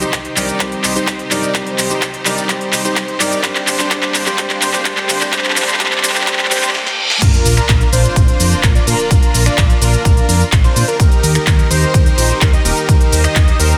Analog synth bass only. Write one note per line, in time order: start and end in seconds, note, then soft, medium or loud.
0.13 0.28 C2 loud
0.37 0.51 C2 medium
0.60 0.75 C2 medium
0.84 0.99 C2 loud
1.07 1.22 C2 medium
1.31 1.46 G1 loud
1.55 1.62 C2 loud
1.78 1.93 C2 medium
2.02 2.17 C2 loud
2.26 2.40 C2 medium
2.49 2.64 C2 medium
2.73 2.87 C2 loud
2.96 3.11 C2 medium
3.20 3.35 G1 loud
3.44 3.51 G1 loud
3.67 3.82 G1 medium
3.91 4.06 G1 loud
4.15 4.29 G1 medium
4.38 4.53 G1 medium
4.62 4.76 G1 loud
4.85 5.00 G1 medium
5.09 5.24 D2 loud
5.33 5.40 G1 loud
5.56 5.71 G1 medium
5.80 5.95 G1 loud
6.04 6.18 G1 medium
6.27 6.42 G1 medium
6.51 6.65 G1 medium
7.22 7.29 A#1 loud
7.45 7.60 A#1 medium
7.69 7.84 A#1 loud
7.93 8.07 A#1 medium
8.16 8.31 A#1 medium
8.40 8.54 F2 medium
8.63 8.78 A#1 medium
8.87 8.94 A#2 medium
9.11 9.18 A#1 loud
9.34 9.49 A#1 medium
9.58 9.73 A#1 loud
9.82 9.96 A#1 medium
10.05 10.20 A#1 medium
10.29 10.43 F2 medium
10.52 10.67 A#1 medium
10.76 10.83 A#2 medium
11.00 11.07 D#2 loud
11.23 11.38 D#2 medium
11.47 11.62 D#2 loud
11.70 11.85 D#2 medium
11.94 12.09 D#2 medium
12.18 12.32 A#1 medium
12.41 12.56 D#2 medium
12.65 12.72 D#1 medium
12.89 12.96 D#2 loud
13.12 13.27 D#2 medium
13.36 13.51 D#2 loud
13.59 13.74 D#2 medium